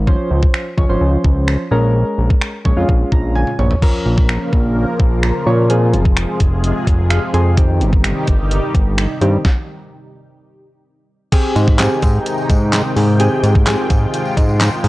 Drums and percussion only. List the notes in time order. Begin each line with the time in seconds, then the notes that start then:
0.07 kick
0.43 kick
0.54 finger snap
0.78 kick
1.25 kick
1.48 finger snap
2.30 kick
2.41 finger snap
2.65 kick
2.89 kick
3.12 kick
3.35 high tom
3.47 mid tom
3.59 mid tom
3.71 floor tom
3.82 kick, crash
4.18 kick
4.29 finger snap
4.53 kick
5.00 kick
5.23 finger snap
5.70 closed hi-hat
5.94 closed hi-hat
6.05 kick
6.17 finger snap, closed hi-hat
6.40 kick, closed hi-hat
6.64 closed hi-hat
6.87 kick, closed hi-hat
7.10 finger snap, closed hi-hat
7.34 closed hi-hat
7.57 kick, closed hi-hat
7.81 closed hi-hat
7.93 kick
8.04 finger snap, closed hi-hat
8.27 kick, closed hi-hat
8.51 closed hi-hat
8.75 kick, closed hi-hat
8.98 finger snap, closed hi-hat
9.22 closed hi-hat
9.45 kick, snare
11.32 kick, closed hi-hat, crash, tambourine
11.56 closed hi-hat, tambourine
11.68 kick
11.79 snare, clap, closed hi-hat, tambourine
12.02 kick, closed hi-hat, tambourine
12.26 closed hi-hat, tambourine
12.38 tambourine
12.49 kick, closed hi-hat, tambourine
12.73 snare, clap, closed hi-hat, tambourine
12.96 open hi-hat, tambourine
13.19 closed hi-hat, tambourine
13.43 closed hi-hat, tambourine
13.55 kick
13.66 snare, clap, closed hi-hat, tambourine
13.90 kick, closed hi-hat, tambourine
14.14 closed hi-hat, tambourine
14.25 tambourine
14.37 kick, closed hi-hat, tambourine
14.49 tambourine
14.60 snare, clap, closed hi-hat, tambourine
14.84 open hi-hat, tambourine